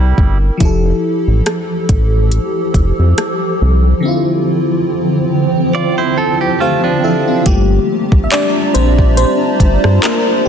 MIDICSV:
0, 0, Header, 1, 6, 480
1, 0, Start_track
1, 0, Tempo, 857143
1, 340, Time_signature, 4, 2, 24, 8
1, 5872, End_track
2, 0, Start_track
2, 0, Title_t, "FM electric piano"
2, 0, Program_c, 0, 5
2, 0, Control_c, 0, 64, 127
2, 0, Note_on_c, 0, 60, 72
2, 0, Note_on_c, 0, 64, 66
2, 0, Note_on_c, 0, 70, 78
2, 308, Note_off_c, 0, 60, 0
2, 319, Note_off_c, 0, 64, 0
2, 322, Note_on_c, 0, 53, 72
2, 330, Note_off_c, 0, 70, 0
2, 336, Note_on_c, 0, 64, 64
2, 347, Control_c, 0, 64, 0
2, 350, Note_on_c, 0, 67, 63
2, 365, Note_on_c, 0, 69, 83
2, 459, Control_c, 0, 64, 127
2, 2229, Note_off_c, 0, 53, 0
2, 2236, Note_off_c, 0, 64, 0
2, 2242, Note_on_c, 0, 50, 70
2, 2243, Note_off_c, 0, 67, 0
2, 2250, Note_off_c, 0, 69, 0
2, 2255, Note_on_c, 0, 60, 64
2, 2266, Control_c, 0, 64, 0
2, 2270, Note_on_c, 0, 64, 66
2, 2284, Note_on_c, 0, 65, 79
2, 2368, Control_c, 0, 64, 127
2, 3463, Note_on_c, 0, 81, 65
2, 3582, Note_off_c, 0, 81, 0
2, 3595, Note_on_c, 0, 79, 63
2, 3675, Note_off_c, 0, 60, 0
2, 3683, Note_off_c, 0, 64, 0
2, 3690, Note_off_c, 0, 65, 0
2, 3695, Note_off_c, 0, 79, 0
2, 3703, Note_on_c, 0, 72, 61
2, 3703, Note_on_c, 0, 77, 70
2, 3705, Note_on_c, 0, 67, 51
2, 3925, Note_off_c, 0, 77, 0
2, 3930, Note_off_c, 0, 72, 0
2, 3931, Note_off_c, 0, 67, 0
2, 3942, Note_on_c, 0, 69, 63
2, 3943, Note_on_c, 0, 76, 65
2, 3946, Note_on_c, 0, 64, 56
2, 4064, Note_off_c, 0, 69, 0
2, 4066, Note_off_c, 0, 64, 0
2, 4075, Note_on_c, 0, 65, 62
2, 4078, Note_on_c, 0, 60, 51
2, 4149, Note_off_c, 0, 50, 0
2, 4165, Note_off_c, 0, 76, 0
2, 4178, Note_off_c, 0, 65, 0
2, 4178, Note_on_c, 0, 57, 60
2, 4179, Note_on_c, 0, 67, 105
2, 4182, Note_on_c, 0, 58, 55
2, 4185, Note_on_c, 0, 55, 79
2, 4185, Note_on_c, 0, 65, 60
2, 4187, Control_c, 0, 64, 0
2, 4271, Control_c, 0, 64, 127
2, 4302, Note_off_c, 0, 60, 0
2, 4506, Note_off_c, 0, 57, 0
2, 4508, Note_off_c, 0, 58, 0
2, 4509, Note_off_c, 0, 65, 0
2, 4604, Note_off_c, 0, 55, 0
2, 4613, Note_on_c, 0, 76, 83
2, 4637, Note_off_c, 0, 67, 0
2, 4655, Note_off_c, 0, 76, 0
2, 4658, Note_on_c, 0, 74, 113
2, 4665, Note_on_c, 0, 62, 87
2, 4886, Note_off_c, 0, 62, 0
2, 4895, Note_on_c, 0, 72, 97
2, 4905, Note_on_c, 0, 60, 79
2, 4906, Note_off_c, 0, 74, 0
2, 5126, Note_off_c, 0, 60, 0
2, 5129, Note_off_c, 0, 72, 0
2, 5136, Note_on_c, 0, 72, 112
2, 5144, Note_on_c, 0, 60, 80
2, 5600, Note_off_c, 0, 60, 0
2, 5616, Note_on_c, 0, 70, 96
2, 5626, Note_on_c, 0, 58, 72
2, 5632, Note_off_c, 0, 72, 0
2, 5847, Note_off_c, 0, 58, 0
2, 5854, Note_on_c, 0, 67, 85
2, 5865, Note_off_c, 0, 70, 0
2, 5872, Note_off_c, 0, 67, 0
2, 5872, End_track
3, 0, Start_track
3, 0, Title_t, "Clean electric guitar"
3, 0, Program_c, 1, 27
3, 0, Note_on_c, 1, 55, 61
3, 0, Note_on_c, 1, 64, 74
3, 208, Note_off_c, 1, 64, 0
3, 209, Note_off_c, 1, 55, 0
3, 3218, Note_on_c, 1, 74, 69
3, 3222, Note_on_c, 1, 65, 59
3, 3342, Note_off_c, 1, 74, 0
3, 3344, Note_off_c, 1, 65, 0
3, 3348, Note_on_c, 1, 72, 72
3, 3352, Note_on_c, 1, 64, 62
3, 3454, Note_off_c, 1, 72, 0
3, 3456, Note_off_c, 1, 64, 0
3, 3459, Note_on_c, 1, 69, 85
3, 3461, Note_on_c, 1, 60, 70
3, 3582, Note_off_c, 1, 69, 0
3, 3584, Note_off_c, 1, 60, 0
3, 3589, Note_on_c, 1, 67, 78
3, 3694, Note_off_c, 1, 67, 0
3, 3698, Note_on_c, 1, 65, 76
3, 3701, Note_on_c, 1, 57, 65
3, 3822, Note_off_c, 1, 65, 0
3, 3824, Note_off_c, 1, 57, 0
3, 3829, Note_on_c, 1, 62, 70
3, 3832, Note_on_c, 1, 53, 62
3, 4162, Note_off_c, 1, 62, 0
3, 4164, Note_off_c, 1, 53, 0
3, 5872, End_track
4, 0, Start_track
4, 0, Title_t, "Ambient pad"
4, 0, Program_c, 2, 92
4, 342, Note_on_c, 2, 53, 81
4, 343, Note_on_c, 2, 67, 79
4, 343, Note_on_c, 2, 69, 99
4, 2242, Note_off_c, 2, 53, 0
4, 2242, Note_off_c, 2, 67, 0
4, 2243, Note_off_c, 2, 69, 0
4, 2259, Note_on_c, 2, 60, 78
4, 2260, Note_on_c, 2, 53, 95
4, 2261, Note_on_c, 2, 50, 82
4, 4161, Note_off_c, 2, 53, 0
4, 4161, Note_off_c, 2, 60, 0
4, 4162, Note_off_c, 2, 50, 0
4, 4179, Note_on_c, 2, 82, 97
4, 4180, Note_on_c, 2, 55, 89
4, 4180, Note_on_c, 2, 62, 81
4, 4181, Note_on_c, 2, 65, 83
4, 5872, Note_off_c, 2, 55, 0
4, 5872, Note_off_c, 2, 62, 0
4, 5872, Note_off_c, 2, 65, 0
4, 5872, Note_off_c, 2, 82, 0
4, 5872, End_track
5, 0, Start_track
5, 0, Title_t, "Analog synth bass"
5, 0, Program_c, 3, 38
5, 0, Note_on_c, 3, 36, 90
5, 75, Note_off_c, 3, 36, 0
5, 101, Note_on_c, 3, 31, 94
5, 283, Note_off_c, 3, 31, 0
5, 341, Note_on_c, 3, 29, 103
5, 523, Note_off_c, 3, 29, 0
5, 713, Note_on_c, 3, 33, 93
5, 796, Note_off_c, 3, 33, 0
5, 1061, Note_on_c, 3, 33, 88
5, 1341, Note_off_c, 3, 33, 0
5, 1537, Note_on_c, 3, 29, 97
5, 1637, Note_off_c, 3, 29, 0
5, 1675, Note_on_c, 3, 41, 89
5, 1757, Note_off_c, 3, 41, 0
5, 2025, Note_on_c, 3, 36, 102
5, 2206, Note_off_c, 3, 36, 0
5, 4180, Note_on_c, 3, 31, 105
5, 4363, Note_off_c, 3, 31, 0
5, 4549, Note_on_c, 3, 34, 90
5, 4633, Note_off_c, 3, 34, 0
5, 4902, Note_on_c, 3, 34, 95
5, 5182, Note_off_c, 3, 34, 0
5, 5377, Note_on_c, 3, 31, 97
5, 5477, Note_off_c, 3, 31, 0
5, 5513, Note_on_c, 3, 43, 94
5, 5595, Note_off_c, 3, 43, 0
5, 5872, End_track
6, 0, Start_track
6, 0, Title_t, "Drums"
6, 100, Note_on_c, 9, 36, 91
6, 156, Note_off_c, 9, 36, 0
6, 338, Note_on_c, 9, 42, 60
6, 339, Note_on_c, 9, 36, 105
6, 394, Note_off_c, 9, 42, 0
6, 395, Note_off_c, 9, 36, 0
6, 818, Note_on_c, 9, 42, 62
6, 820, Note_on_c, 9, 37, 108
6, 874, Note_off_c, 9, 42, 0
6, 876, Note_off_c, 9, 37, 0
6, 1059, Note_on_c, 9, 42, 54
6, 1060, Note_on_c, 9, 36, 79
6, 1115, Note_off_c, 9, 42, 0
6, 1116, Note_off_c, 9, 36, 0
6, 1297, Note_on_c, 9, 42, 72
6, 1353, Note_off_c, 9, 42, 0
6, 1536, Note_on_c, 9, 36, 80
6, 1537, Note_on_c, 9, 42, 60
6, 1592, Note_off_c, 9, 36, 0
6, 1593, Note_off_c, 9, 42, 0
6, 1780, Note_on_c, 9, 42, 77
6, 1781, Note_on_c, 9, 37, 106
6, 1836, Note_off_c, 9, 42, 0
6, 1837, Note_off_c, 9, 37, 0
6, 4176, Note_on_c, 9, 42, 61
6, 4178, Note_on_c, 9, 36, 117
6, 4232, Note_off_c, 9, 42, 0
6, 4234, Note_off_c, 9, 36, 0
6, 4547, Note_on_c, 9, 36, 94
6, 4603, Note_off_c, 9, 36, 0
6, 4658, Note_on_c, 9, 42, 72
6, 4659, Note_on_c, 9, 39, 115
6, 4714, Note_off_c, 9, 42, 0
6, 4715, Note_off_c, 9, 39, 0
6, 4899, Note_on_c, 9, 42, 62
6, 4955, Note_off_c, 9, 42, 0
6, 5031, Note_on_c, 9, 36, 94
6, 5087, Note_off_c, 9, 36, 0
6, 5137, Note_on_c, 9, 42, 74
6, 5193, Note_off_c, 9, 42, 0
6, 5376, Note_on_c, 9, 36, 83
6, 5378, Note_on_c, 9, 42, 65
6, 5432, Note_off_c, 9, 36, 0
6, 5434, Note_off_c, 9, 42, 0
6, 5510, Note_on_c, 9, 37, 100
6, 5566, Note_off_c, 9, 37, 0
6, 5619, Note_on_c, 9, 42, 78
6, 5620, Note_on_c, 9, 39, 112
6, 5675, Note_off_c, 9, 42, 0
6, 5676, Note_off_c, 9, 39, 0
6, 5872, End_track
0, 0, End_of_file